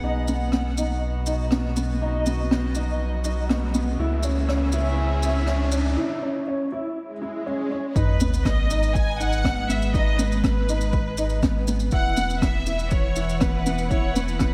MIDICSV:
0, 0, Header, 1, 9, 480
1, 0, Start_track
1, 0, Key_signature, 5, "minor"
1, 0, Tempo, 495868
1, 27, Time_signature, 4, 2, 24, 8
1, 14074, End_track
2, 0, Start_track
2, 0, Title_t, "Violin section"
2, 0, Program_c, 0, 48
2, 7705, Note_on_c, 0, 71, 90
2, 8152, Note_off_c, 0, 71, 0
2, 8185, Note_on_c, 0, 75, 93
2, 8658, Note_on_c, 0, 80, 103
2, 8666, Note_off_c, 0, 75, 0
2, 8902, Note_off_c, 0, 80, 0
2, 8904, Note_on_c, 0, 78, 111
2, 9385, Note_off_c, 0, 78, 0
2, 9387, Note_on_c, 0, 76, 96
2, 9625, Note_on_c, 0, 75, 100
2, 9627, Note_off_c, 0, 76, 0
2, 9849, Note_off_c, 0, 75, 0
2, 9866, Note_on_c, 0, 71, 90
2, 11307, Note_off_c, 0, 71, 0
2, 11558, Note_on_c, 0, 78, 105
2, 11999, Note_off_c, 0, 78, 0
2, 12035, Note_on_c, 0, 76, 98
2, 12502, Note_on_c, 0, 73, 92
2, 12511, Note_off_c, 0, 76, 0
2, 12985, Note_off_c, 0, 73, 0
2, 12990, Note_on_c, 0, 71, 87
2, 13468, Note_off_c, 0, 71, 0
2, 13468, Note_on_c, 0, 73, 88
2, 13691, Note_off_c, 0, 73, 0
2, 13716, Note_on_c, 0, 71, 79
2, 14074, Note_off_c, 0, 71, 0
2, 14074, End_track
3, 0, Start_track
3, 0, Title_t, "String section"
3, 0, Program_c, 1, 48
3, 0, Note_on_c, 1, 59, 66
3, 0, Note_on_c, 1, 68, 67
3, 0, Note_on_c, 1, 78, 74
3, 34, Note_on_c, 1, 47, 63
3, 750, Note_off_c, 1, 68, 0
3, 888, Note_on_c, 1, 66, 73
3, 1561, Note_off_c, 1, 78, 0
3, 1754, Note_on_c, 1, 75, 67
3, 3849, Note_on_c, 1, 49, 68
3, 3866, Note_off_c, 1, 75, 0
3, 3870, Note_off_c, 1, 47, 0
3, 4326, Note_on_c, 1, 61, 76
3, 4369, Note_on_c, 1, 68, 73
3, 4391, Note_on_c, 1, 76, 71
3, 5078, Note_off_c, 1, 59, 0
3, 5137, Note_off_c, 1, 66, 0
3, 5778, Note_off_c, 1, 49, 0
3, 5780, Note_off_c, 1, 61, 0
3, 5781, Note_off_c, 1, 76, 0
3, 5785, Note_off_c, 1, 68, 0
3, 7698, Note_on_c, 1, 56, 70
3, 8342, Note_on_c, 1, 71, 76
3, 11541, Note_on_c, 1, 52, 88
3, 11542, Note_off_c, 1, 56, 0
3, 12096, Note_on_c, 1, 64, 69
3, 12310, Note_on_c, 1, 78, 70
3, 13083, Note_off_c, 1, 71, 0
3, 14074, Note_off_c, 1, 52, 0
3, 14074, Note_off_c, 1, 64, 0
3, 14074, Note_off_c, 1, 78, 0
3, 14074, End_track
4, 0, Start_track
4, 0, Title_t, "Grand piano"
4, 0, Program_c, 2, 0
4, 34, Note_on_c, 2, 63, 88
4, 221, Note_off_c, 2, 63, 0
4, 276, Note_on_c, 2, 59, 70
4, 462, Note_off_c, 2, 59, 0
4, 511, Note_on_c, 2, 59, 75
4, 699, Note_off_c, 2, 59, 0
4, 751, Note_on_c, 2, 63, 77
4, 1130, Note_off_c, 2, 63, 0
4, 1227, Note_on_c, 2, 63, 74
4, 1417, Note_off_c, 2, 63, 0
4, 1468, Note_on_c, 2, 59, 88
4, 1658, Note_off_c, 2, 59, 0
4, 1711, Note_on_c, 2, 59, 73
4, 1899, Note_off_c, 2, 59, 0
4, 1953, Note_on_c, 2, 63, 91
4, 2141, Note_off_c, 2, 63, 0
4, 2194, Note_on_c, 2, 59, 74
4, 2381, Note_off_c, 2, 59, 0
4, 2431, Note_on_c, 2, 59, 84
4, 2620, Note_off_c, 2, 59, 0
4, 2670, Note_on_c, 2, 63, 77
4, 3049, Note_off_c, 2, 63, 0
4, 3145, Note_on_c, 2, 63, 79
4, 3336, Note_off_c, 2, 63, 0
4, 3387, Note_on_c, 2, 59, 91
4, 3577, Note_off_c, 2, 59, 0
4, 3625, Note_on_c, 2, 59, 79
4, 3816, Note_off_c, 2, 59, 0
4, 3867, Note_on_c, 2, 64, 98
4, 4057, Note_off_c, 2, 64, 0
4, 4105, Note_on_c, 2, 61, 80
4, 4296, Note_off_c, 2, 61, 0
4, 4343, Note_on_c, 2, 61, 79
4, 4535, Note_off_c, 2, 61, 0
4, 4583, Note_on_c, 2, 64, 86
4, 4965, Note_off_c, 2, 64, 0
4, 5064, Note_on_c, 2, 64, 83
4, 5255, Note_off_c, 2, 64, 0
4, 5302, Note_on_c, 2, 61, 89
4, 5494, Note_off_c, 2, 61, 0
4, 5540, Note_on_c, 2, 61, 74
4, 5733, Note_off_c, 2, 61, 0
4, 5777, Note_on_c, 2, 64, 93
4, 5971, Note_off_c, 2, 64, 0
4, 6025, Note_on_c, 2, 61, 73
4, 6216, Note_off_c, 2, 61, 0
4, 6266, Note_on_c, 2, 61, 82
4, 6457, Note_off_c, 2, 61, 0
4, 6507, Note_on_c, 2, 64, 83
4, 6888, Note_off_c, 2, 64, 0
4, 6986, Note_on_c, 2, 64, 81
4, 7176, Note_off_c, 2, 64, 0
4, 7223, Note_on_c, 2, 61, 92
4, 7415, Note_off_c, 2, 61, 0
4, 7464, Note_on_c, 2, 61, 80
4, 7655, Note_off_c, 2, 61, 0
4, 7706, Note_on_c, 2, 63, 96
4, 7897, Note_off_c, 2, 63, 0
4, 7949, Note_on_c, 2, 59, 71
4, 8138, Note_off_c, 2, 59, 0
4, 8184, Note_on_c, 2, 59, 83
4, 8376, Note_off_c, 2, 59, 0
4, 8427, Note_on_c, 2, 63, 83
4, 8807, Note_off_c, 2, 63, 0
4, 8906, Note_on_c, 2, 63, 85
4, 9097, Note_off_c, 2, 63, 0
4, 9145, Note_on_c, 2, 59, 88
4, 9336, Note_off_c, 2, 59, 0
4, 9381, Note_on_c, 2, 59, 77
4, 9574, Note_off_c, 2, 59, 0
4, 9624, Note_on_c, 2, 63, 98
4, 9815, Note_off_c, 2, 63, 0
4, 9861, Note_on_c, 2, 59, 75
4, 10053, Note_off_c, 2, 59, 0
4, 10102, Note_on_c, 2, 59, 85
4, 10294, Note_off_c, 2, 59, 0
4, 10345, Note_on_c, 2, 63, 81
4, 10726, Note_off_c, 2, 63, 0
4, 10823, Note_on_c, 2, 63, 81
4, 11015, Note_off_c, 2, 63, 0
4, 11063, Note_on_c, 2, 59, 88
4, 11255, Note_off_c, 2, 59, 0
4, 11303, Note_on_c, 2, 59, 79
4, 11495, Note_off_c, 2, 59, 0
4, 11541, Note_on_c, 2, 64, 94
4, 11733, Note_off_c, 2, 64, 0
4, 11781, Note_on_c, 2, 59, 77
4, 11974, Note_off_c, 2, 59, 0
4, 12021, Note_on_c, 2, 59, 83
4, 12214, Note_off_c, 2, 59, 0
4, 12262, Note_on_c, 2, 64, 77
4, 12644, Note_off_c, 2, 64, 0
4, 12742, Note_on_c, 2, 64, 84
4, 12934, Note_off_c, 2, 64, 0
4, 12981, Note_on_c, 2, 59, 91
4, 13174, Note_off_c, 2, 59, 0
4, 13226, Note_on_c, 2, 59, 79
4, 13417, Note_off_c, 2, 59, 0
4, 13470, Note_on_c, 2, 64, 94
4, 13659, Note_off_c, 2, 64, 0
4, 13706, Note_on_c, 2, 59, 82
4, 13897, Note_off_c, 2, 59, 0
4, 13945, Note_on_c, 2, 59, 82
4, 14074, Note_off_c, 2, 59, 0
4, 14074, End_track
5, 0, Start_track
5, 0, Title_t, "Sub bass"
5, 0, Program_c, 3, 38
5, 27, Note_on_c, 3, 35, 86
5, 3843, Note_off_c, 3, 35, 0
5, 3859, Note_on_c, 3, 37, 92
5, 5783, Note_off_c, 3, 37, 0
5, 7703, Note_on_c, 3, 32, 90
5, 11521, Note_off_c, 3, 32, 0
5, 11541, Note_on_c, 3, 28, 90
5, 14074, Note_off_c, 3, 28, 0
5, 14074, End_track
6, 0, Start_track
6, 0, Title_t, "Riser"
6, 0, Program_c, 4, 103
6, 29, Note_on_c, 4, 60, 81
6, 5788, Note_off_c, 4, 60, 0
6, 14074, End_track
7, 0, Start_track
7, 0, Title_t, "Sub drop"
7, 0, Program_c, 5, 103
7, 7706, Note_on_c, 5, 60, 81
7, 9626, Note_off_c, 5, 60, 0
7, 14074, End_track
8, 0, Start_track
8, 0, Title_t, "Swell"
8, 0, Program_c, 6, 103
8, 6744, Note_on_c, 6, 60, 77
8, 7705, Note_off_c, 6, 60, 0
8, 14074, End_track
9, 0, Start_track
9, 0, Title_t, "Drums"
9, 267, Note_on_c, 9, 82, 76
9, 364, Note_off_c, 9, 82, 0
9, 503, Note_on_c, 9, 37, 86
9, 600, Note_off_c, 9, 37, 0
9, 750, Note_on_c, 9, 82, 80
9, 847, Note_off_c, 9, 82, 0
9, 1221, Note_on_c, 9, 82, 73
9, 1318, Note_off_c, 9, 82, 0
9, 1459, Note_on_c, 9, 37, 77
9, 1556, Note_off_c, 9, 37, 0
9, 1708, Note_on_c, 9, 82, 79
9, 1805, Note_off_c, 9, 82, 0
9, 2187, Note_on_c, 9, 82, 67
9, 2284, Note_off_c, 9, 82, 0
9, 2432, Note_on_c, 9, 37, 78
9, 2528, Note_off_c, 9, 37, 0
9, 2659, Note_on_c, 9, 82, 69
9, 2756, Note_off_c, 9, 82, 0
9, 3138, Note_on_c, 9, 82, 65
9, 3235, Note_off_c, 9, 82, 0
9, 3383, Note_on_c, 9, 37, 85
9, 3480, Note_off_c, 9, 37, 0
9, 3622, Note_on_c, 9, 82, 65
9, 3719, Note_off_c, 9, 82, 0
9, 4093, Note_on_c, 9, 82, 69
9, 4190, Note_off_c, 9, 82, 0
9, 4344, Note_on_c, 9, 37, 90
9, 4440, Note_off_c, 9, 37, 0
9, 4571, Note_on_c, 9, 82, 70
9, 4668, Note_off_c, 9, 82, 0
9, 5059, Note_on_c, 9, 82, 69
9, 5156, Note_off_c, 9, 82, 0
9, 5291, Note_on_c, 9, 37, 82
9, 5387, Note_off_c, 9, 37, 0
9, 5534, Note_on_c, 9, 82, 80
9, 5630, Note_off_c, 9, 82, 0
9, 7703, Note_on_c, 9, 36, 109
9, 7706, Note_on_c, 9, 82, 47
9, 7800, Note_off_c, 9, 36, 0
9, 7803, Note_off_c, 9, 82, 0
9, 7939, Note_on_c, 9, 82, 87
9, 8036, Note_off_c, 9, 82, 0
9, 8070, Note_on_c, 9, 82, 57
9, 8167, Note_off_c, 9, 82, 0
9, 8183, Note_on_c, 9, 36, 110
9, 8187, Note_on_c, 9, 82, 50
9, 8189, Note_on_c, 9, 37, 112
9, 8279, Note_off_c, 9, 36, 0
9, 8284, Note_off_c, 9, 82, 0
9, 8286, Note_off_c, 9, 37, 0
9, 8425, Note_on_c, 9, 82, 91
9, 8521, Note_off_c, 9, 82, 0
9, 8547, Note_on_c, 9, 82, 59
9, 8643, Note_off_c, 9, 82, 0
9, 8664, Note_on_c, 9, 36, 102
9, 8669, Note_on_c, 9, 82, 49
9, 8761, Note_off_c, 9, 36, 0
9, 8766, Note_off_c, 9, 82, 0
9, 8909, Note_on_c, 9, 82, 76
9, 9006, Note_off_c, 9, 82, 0
9, 9028, Note_on_c, 9, 82, 51
9, 9125, Note_off_c, 9, 82, 0
9, 9143, Note_on_c, 9, 36, 99
9, 9145, Note_on_c, 9, 82, 40
9, 9150, Note_on_c, 9, 37, 105
9, 9240, Note_off_c, 9, 36, 0
9, 9242, Note_off_c, 9, 82, 0
9, 9247, Note_off_c, 9, 37, 0
9, 9389, Note_on_c, 9, 82, 83
9, 9486, Note_off_c, 9, 82, 0
9, 9507, Note_on_c, 9, 82, 58
9, 9604, Note_off_c, 9, 82, 0
9, 9624, Note_on_c, 9, 36, 116
9, 9628, Note_on_c, 9, 82, 47
9, 9721, Note_off_c, 9, 36, 0
9, 9725, Note_off_c, 9, 82, 0
9, 9864, Note_on_c, 9, 82, 88
9, 9961, Note_off_c, 9, 82, 0
9, 9988, Note_on_c, 9, 82, 58
9, 10084, Note_off_c, 9, 82, 0
9, 10103, Note_on_c, 9, 36, 107
9, 10106, Note_on_c, 9, 82, 52
9, 10112, Note_on_c, 9, 37, 101
9, 10200, Note_off_c, 9, 36, 0
9, 10203, Note_off_c, 9, 82, 0
9, 10209, Note_off_c, 9, 37, 0
9, 10346, Note_on_c, 9, 82, 77
9, 10443, Note_off_c, 9, 82, 0
9, 10463, Note_on_c, 9, 82, 65
9, 10560, Note_off_c, 9, 82, 0
9, 10577, Note_on_c, 9, 82, 45
9, 10583, Note_on_c, 9, 36, 109
9, 10674, Note_off_c, 9, 82, 0
9, 10679, Note_off_c, 9, 36, 0
9, 10816, Note_on_c, 9, 82, 78
9, 10912, Note_off_c, 9, 82, 0
9, 10933, Note_on_c, 9, 82, 55
9, 11030, Note_off_c, 9, 82, 0
9, 11061, Note_on_c, 9, 82, 48
9, 11062, Note_on_c, 9, 36, 110
9, 11064, Note_on_c, 9, 37, 84
9, 11157, Note_off_c, 9, 82, 0
9, 11159, Note_off_c, 9, 36, 0
9, 11161, Note_off_c, 9, 37, 0
9, 11300, Note_on_c, 9, 82, 89
9, 11397, Note_off_c, 9, 82, 0
9, 11419, Note_on_c, 9, 82, 52
9, 11516, Note_off_c, 9, 82, 0
9, 11531, Note_on_c, 9, 82, 48
9, 11542, Note_on_c, 9, 36, 114
9, 11628, Note_off_c, 9, 82, 0
9, 11639, Note_off_c, 9, 36, 0
9, 11778, Note_on_c, 9, 82, 81
9, 11875, Note_off_c, 9, 82, 0
9, 11907, Note_on_c, 9, 82, 62
9, 12004, Note_off_c, 9, 82, 0
9, 12022, Note_on_c, 9, 37, 97
9, 12023, Note_on_c, 9, 36, 111
9, 12028, Note_on_c, 9, 82, 54
9, 12118, Note_off_c, 9, 37, 0
9, 12120, Note_off_c, 9, 36, 0
9, 12125, Note_off_c, 9, 82, 0
9, 12258, Note_on_c, 9, 82, 87
9, 12355, Note_off_c, 9, 82, 0
9, 12379, Note_on_c, 9, 82, 65
9, 12476, Note_off_c, 9, 82, 0
9, 12495, Note_on_c, 9, 82, 48
9, 12503, Note_on_c, 9, 36, 115
9, 12592, Note_off_c, 9, 82, 0
9, 12600, Note_off_c, 9, 36, 0
9, 12737, Note_on_c, 9, 82, 82
9, 12834, Note_off_c, 9, 82, 0
9, 12869, Note_on_c, 9, 82, 53
9, 12966, Note_off_c, 9, 82, 0
9, 12978, Note_on_c, 9, 37, 95
9, 12981, Note_on_c, 9, 82, 45
9, 12983, Note_on_c, 9, 36, 111
9, 13075, Note_off_c, 9, 37, 0
9, 13078, Note_off_c, 9, 82, 0
9, 13080, Note_off_c, 9, 36, 0
9, 13226, Note_on_c, 9, 82, 87
9, 13323, Note_off_c, 9, 82, 0
9, 13341, Note_on_c, 9, 82, 62
9, 13438, Note_off_c, 9, 82, 0
9, 13463, Note_on_c, 9, 36, 117
9, 13464, Note_on_c, 9, 82, 48
9, 13559, Note_off_c, 9, 36, 0
9, 13561, Note_off_c, 9, 82, 0
9, 13704, Note_on_c, 9, 82, 82
9, 13801, Note_off_c, 9, 82, 0
9, 13822, Note_on_c, 9, 82, 53
9, 13919, Note_off_c, 9, 82, 0
9, 13934, Note_on_c, 9, 37, 98
9, 13940, Note_on_c, 9, 82, 55
9, 13943, Note_on_c, 9, 36, 115
9, 14030, Note_off_c, 9, 37, 0
9, 14037, Note_off_c, 9, 82, 0
9, 14040, Note_off_c, 9, 36, 0
9, 14074, End_track
0, 0, End_of_file